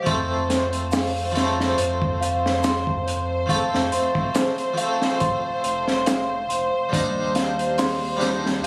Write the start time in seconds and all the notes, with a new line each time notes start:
0.02 F3 A3, closed hi-hat
0.06 F2 C4 C5 C6, kick
0.11 A4
0.49 C5, snare, closed hi-hat
0.73 closed hi-hat
0.92 F5, snare, open hi-hat, shaker
1.32 F3 A3 C6, closed hi-hat
1.37 C4 A4, snare
1.60 snare
1.78 F2 C5, closed hi-hat
2.02 kick
2.21 F5, closed hi-hat
2.46 snare
2.63 C6, snare, closed hi-hat, shaker
2.87 kick
3.07 C5, closed hi-hat
3.46 F3 A3 F5, kick, closed hi-hat
3.52 C4 A4
3.74 F2, snare
3.92 C6, closed hi-hat
4.15 kick
4.34 C5, snare, closed hi-hat, shaker
4.58 closed hi-hat
4.74 F3 A3 F5, closed hi-hat
4.79 C4 A4
5.02 snare
5.20 C6, kick, closed hi-hat
5.64 F1 C5, closed hi-hat
5.88 snare
6.06 F5, snare, closed hi-hat, shaker
6.49 F1 C6, closed hi-hat
6.89 G3 D4 C5, kick
6.93 D#2 D#4, closed hi-hat
6.97 C5
7.35 F5, snare, closed hi-hat
7.59 closed hi-hat
7.78 C6, snare, open hi-hat, shaker
8.17 G3 D4
8.21 D#4 C5, snare, closed hi-hat
8.25 C5
8.46 snare
8.64 F5